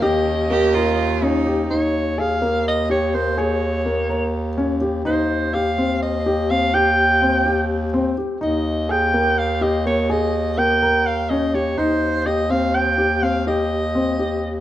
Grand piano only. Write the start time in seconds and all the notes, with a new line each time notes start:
0.02 G4
0.50 A#3
0.75 A#4
1.22 C#4
1.46 G4
1.71 D#4
2.18 G#4
2.42 A#3
2.90 G4
3.14 A#3
3.38 G#4
3.86 A#3
4.09 A#4
4.57 C#4
4.81 G4
5.05 D#4
5.54 G4
5.78 C4
6.26 G4
6.50 C4
6.74 G4
7.22 C4
7.46 G4
7.94 C4
8.18 G4
8.41 D#4
8.89 G#4
9.14 A#3
9.61 G4
9.86 A#3
10.10 G#4
10.58 A#3
10.82 A#4
11.30 C#4
11.54 G4
11.78 D#4
12.26 G4
12.50 C4
12.98 G4
13.22 C4
13.47 G4
13.95 C4
14.19 G4